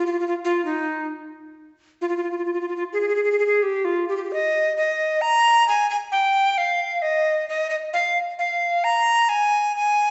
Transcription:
0, 0, Header, 1, 2, 480
1, 0, Start_track
1, 0, Tempo, 456274
1, 1392, Time_signature, 4, 2, 24, 8
1, 10632, End_track
2, 0, Start_track
2, 0, Title_t, "Recorder"
2, 0, Program_c, 0, 74
2, 66, Note_on_c, 0, 65, 77
2, 123, Note_off_c, 0, 65, 0
2, 131, Note_on_c, 0, 65, 64
2, 188, Note_off_c, 0, 65, 0
2, 207, Note_on_c, 0, 65, 72
2, 273, Note_off_c, 0, 65, 0
2, 293, Note_on_c, 0, 65, 61
2, 355, Note_off_c, 0, 65, 0
2, 470, Note_on_c, 0, 65, 83
2, 675, Note_off_c, 0, 65, 0
2, 686, Note_on_c, 0, 63, 68
2, 1126, Note_off_c, 0, 63, 0
2, 2119, Note_on_c, 0, 65, 77
2, 2193, Note_off_c, 0, 65, 0
2, 2199, Note_on_c, 0, 65, 56
2, 2273, Note_off_c, 0, 65, 0
2, 2282, Note_on_c, 0, 65, 60
2, 2344, Note_off_c, 0, 65, 0
2, 2350, Note_on_c, 0, 65, 53
2, 2426, Note_off_c, 0, 65, 0
2, 2432, Note_on_c, 0, 65, 57
2, 2499, Note_off_c, 0, 65, 0
2, 2505, Note_on_c, 0, 65, 44
2, 2573, Note_off_c, 0, 65, 0
2, 2579, Note_on_c, 0, 65, 50
2, 2661, Note_off_c, 0, 65, 0
2, 2668, Note_on_c, 0, 65, 50
2, 2742, Note_off_c, 0, 65, 0
2, 2748, Note_on_c, 0, 65, 59
2, 2817, Note_off_c, 0, 65, 0
2, 2827, Note_on_c, 0, 65, 53
2, 2902, Note_off_c, 0, 65, 0
2, 2908, Note_on_c, 0, 65, 67
2, 2983, Note_off_c, 0, 65, 0
2, 3081, Note_on_c, 0, 68, 94
2, 3157, Note_off_c, 0, 68, 0
2, 3167, Note_on_c, 0, 68, 68
2, 3237, Note_off_c, 0, 68, 0
2, 3246, Note_on_c, 0, 68, 77
2, 3310, Note_off_c, 0, 68, 0
2, 3322, Note_on_c, 0, 68, 63
2, 3396, Note_off_c, 0, 68, 0
2, 3407, Note_on_c, 0, 68, 75
2, 3476, Note_off_c, 0, 68, 0
2, 3491, Note_on_c, 0, 68, 74
2, 3552, Note_off_c, 0, 68, 0
2, 3564, Note_on_c, 0, 68, 85
2, 3634, Note_off_c, 0, 68, 0
2, 3644, Note_on_c, 0, 68, 73
2, 3816, Note_on_c, 0, 67, 87
2, 3832, Note_off_c, 0, 68, 0
2, 4048, Note_on_c, 0, 65, 81
2, 4063, Note_off_c, 0, 67, 0
2, 4282, Note_off_c, 0, 65, 0
2, 4301, Note_on_c, 0, 67, 71
2, 4369, Note_off_c, 0, 67, 0
2, 4387, Note_on_c, 0, 67, 55
2, 4449, Note_off_c, 0, 67, 0
2, 4465, Note_on_c, 0, 67, 61
2, 4521, Note_off_c, 0, 67, 0
2, 4525, Note_on_c, 0, 67, 55
2, 4542, Note_on_c, 0, 75, 88
2, 4547, Note_off_c, 0, 67, 0
2, 4977, Note_off_c, 0, 75, 0
2, 5019, Note_on_c, 0, 75, 90
2, 5486, Note_on_c, 0, 82, 110
2, 5501, Note_off_c, 0, 75, 0
2, 5961, Note_off_c, 0, 82, 0
2, 5978, Note_on_c, 0, 80, 100
2, 6191, Note_off_c, 0, 80, 0
2, 6209, Note_on_c, 0, 80, 100
2, 6272, Note_off_c, 0, 80, 0
2, 6436, Note_on_c, 0, 79, 98
2, 6920, Note_on_c, 0, 77, 87
2, 6936, Note_off_c, 0, 79, 0
2, 7385, Note_on_c, 0, 75, 96
2, 7401, Note_off_c, 0, 77, 0
2, 7869, Note_off_c, 0, 75, 0
2, 7879, Note_on_c, 0, 75, 86
2, 8095, Note_off_c, 0, 75, 0
2, 8101, Note_on_c, 0, 75, 87
2, 8165, Note_off_c, 0, 75, 0
2, 8347, Note_on_c, 0, 77, 93
2, 8609, Note_off_c, 0, 77, 0
2, 8824, Note_on_c, 0, 77, 89
2, 9301, Note_on_c, 0, 82, 101
2, 9317, Note_off_c, 0, 77, 0
2, 9773, Note_on_c, 0, 80, 96
2, 9789, Note_off_c, 0, 82, 0
2, 10260, Note_off_c, 0, 80, 0
2, 10270, Note_on_c, 0, 80, 103
2, 10632, Note_off_c, 0, 80, 0
2, 10632, End_track
0, 0, End_of_file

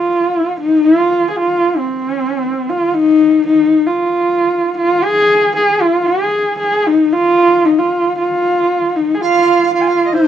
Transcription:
0, 0, Header, 1, 3, 480
1, 0, Start_track
1, 0, Tempo, 523104
1, 782, Time_signature, 4, 2, 24, 8
1, 9431, End_track
2, 0, Start_track
2, 0, Title_t, "Dizi"
2, 0, Program_c, 0, 73
2, 8455, Note_on_c, 0, 77, 89
2, 8906, Note_off_c, 0, 77, 0
2, 8936, Note_on_c, 0, 77, 72
2, 9000, Note_on_c, 0, 80, 62
2, 9014, Note_off_c, 0, 77, 0
2, 9059, Note_on_c, 0, 77, 73
2, 9072, Note_off_c, 0, 80, 0
2, 9220, Note_on_c, 0, 75, 64
2, 9234, Note_off_c, 0, 77, 0
2, 9296, Note_on_c, 0, 72, 81
2, 9310, Note_off_c, 0, 75, 0
2, 9431, Note_off_c, 0, 72, 0
2, 9431, End_track
3, 0, Start_track
3, 0, Title_t, "Horsehead fiddle"
3, 0, Program_c, 1, 110
3, 0, Note_on_c, 1, 65, 86
3, 517, Note_off_c, 1, 65, 0
3, 552, Note_on_c, 1, 63, 92
3, 779, Note_on_c, 1, 65, 103
3, 793, Note_off_c, 1, 63, 0
3, 1187, Note_off_c, 1, 65, 0
3, 1192, Note_on_c, 1, 68, 68
3, 1256, Note_on_c, 1, 65, 102
3, 1269, Note_off_c, 1, 68, 0
3, 1626, Note_on_c, 1, 60, 89
3, 1640, Note_off_c, 1, 65, 0
3, 2469, Note_on_c, 1, 65, 92
3, 2483, Note_off_c, 1, 60, 0
3, 2698, Note_on_c, 1, 63, 110
3, 2712, Note_off_c, 1, 65, 0
3, 3175, Note_off_c, 1, 63, 0
3, 3183, Note_on_c, 1, 63, 102
3, 3543, Note_on_c, 1, 65, 92
3, 3557, Note_off_c, 1, 63, 0
3, 4378, Note_off_c, 1, 65, 0
3, 4385, Note_on_c, 1, 65, 99
3, 4618, Note_on_c, 1, 68, 116
3, 4632, Note_off_c, 1, 65, 0
3, 5096, Note_off_c, 1, 68, 0
3, 5101, Note_on_c, 1, 68, 109
3, 5334, Note_on_c, 1, 65, 94
3, 5347, Note_off_c, 1, 68, 0
3, 5568, Note_on_c, 1, 68, 101
3, 5582, Note_off_c, 1, 65, 0
3, 6039, Note_off_c, 1, 68, 0
3, 6045, Note_on_c, 1, 68, 103
3, 6298, Note_on_c, 1, 63, 98
3, 6312, Note_off_c, 1, 68, 0
3, 6536, Note_on_c, 1, 65, 114
3, 6550, Note_off_c, 1, 63, 0
3, 7020, Note_on_c, 1, 63, 93
3, 7033, Note_off_c, 1, 65, 0
3, 7141, Note_on_c, 1, 65, 91
3, 7155, Note_off_c, 1, 63, 0
3, 7500, Note_off_c, 1, 65, 0
3, 7509, Note_on_c, 1, 65, 99
3, 8223, Note_on_c, 1, 63, 86
3, 8236, Note_off_c, 1, 65, 0
3, 8393, Note_on_c, 1, 68, 68
3, 8406, Note_off_c, 1, 63, 0
3, 8458, Note_on_c, 1, 65, 107
3, 8472, Note_off_c, 1, 68, 0
3, 8933, Note_off_c, 1, 65, 0
3, 8938, Note_on_c, 1, 65, 99
3, 9309, Note_on_c, 1, 60, 92
3, 9323, Note_off_c, 1, 65, 0
3, 9431, Note_off_c, 1, 60, 0
3, 9431, End_track
0, 0, End_of_file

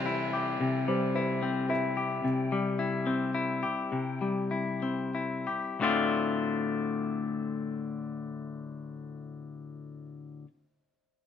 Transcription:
0, 0, Header, 1, 3, 480
1, 0, Start_track
1, 0, Key_signature, -1, "minor"
1, 0, Tempo, 544959
1, 533, Time_signature, 3, 2, 24, 8
1, 2454, Tempo, 576369
1, 3894, Tempo, 643777
1, 4854, Tempo, 684151
1, 8686, End_track
2, 0, Start_track
2, 0, Title_t, "Felt piano"
2, 0, Program_c, 0, 0
2, 773, Note_on_c, 0, 72, 48
2, 995, Note_off_c, 0, 72, 0
2, 1008, Note_on_c, 0, 72, 43
2, 1489, Note_off_c, 0, 72, 0
2, 1490, Note_on_c, 0, 76, 49
2, 1970, Note_off_c, 0, 76, 0
2, 8686, End_track
3, 0, Start_track
3, 0, Title_t, "Clean electric guitar"
3, 0, Program_c, 1, 27
3, 0, Note_on_c, 1, 48, 45
3, 0, Note_on_c, 1, 55, 41
3, 0, Note_on_c, 1, 60, 42
3, 51, Note_on_c, 1, 64, 42
3, 292, Note_on_c, 1, 67, 36
3, 529, Note_off_c, 1, 48, 0
3, 533, Note_on_c, 1, 48, 51
3, 771, Note_off_c, 1, 55, 0
3, 774, Note_on_c, 1, 55, 42
3, 1014, Note_off_c, 1, 64, 0
3, 1018, Note_on_c, 1, 64, 39
3, 1252, Note_off_c, 1, 60, 0
3, 1256, Note_on_c, 1, 60, 40
3, 1491, Note_off_c, 1, 64, 0
3, 1495, Note_on_c, 1, 64, 39
3, 1730, Note_off_c, 1, 67, 0
3, 1734, Note_on_c, 1, 67, 37
3, 1972, Note_off_c, 1, 48, 0
3, 1975, Note_on_c, 1, 48, 42
3, 2216, Note_off_c, 1, 55, 0
3, 2220, Note_on_c, 1, 55, 44
3, 2454, Note_off_c, 1, 64, 0
3, 2457, Note_on_c, 1, 64, 41
3, 2683, Note_off_c, 1, 60, 0
3, 2686, Note_on_c, 1, 60, 41
3, 2909, Note_off_c, 1, 64, 0
3, 2919, Note_on_c, 1, 64, 40
3, 2920, Note_off_c, 1, 67, 0
3, 3155, Note_on_c, 1, 67, 37
3, 3158, Note_off_c, 1, 48, 0
3, 3398, Note_on_c, 1, 48, 39
3, 3401, Note_off_c, 1, 55, 0
3, 3643, Note_on_c, 1, 55, 36
3, 3879, Note_off_c, 1, 64, 0
3, 3889, Note_on_c, 1, 64, 37
3, 3894, Note_off_c, 1, 60, 0
3, 4125, Note_on_c, 1, 60, 33
3, 4356, Note_off_c, 1, 64, 0
3, 4360, Note_off_c, 1, 67, 0
3, 4365, Note_on_c, 1, 64, 36
3, 4604, Note_off_c, 1, 48, 0
3, 4605, Note_on_c, 1, 67, 32
3, 4849, Note_on_c, 1, 38, 42
3, 4851, Note_off_c, 1, 55, 0
3, 4854, Note_off_c, 1, 60, 0
3, 4854, Note_on_c, 1, 45, 48
3, 4855, Note_off_c, 1, 67, 0
3, 4856, Note_off_c, 1, 64, 0
3, 4861, Note_on_c, 1, 50, 54
3, 4867, Note_on_c, 1, 57, 52
3, 4872, Note_on_c, 1, 60, 49
3, 4874, Note_on_c, 1, 65, 54
3, 8106, Note_off_c, 1, 38, 0
3, 8110, Note_off_c, 1, 45, 0
3, 8117, Note_off_c, 1, 50, 0
3, 8123, Note_off_c, 1, 57, 0
3, 8129, Note_off_c, 1, 60, 0
3, 8131, Note_off_c, 1, 65, 0
3, 8686, End_track
0, 0, End_of_file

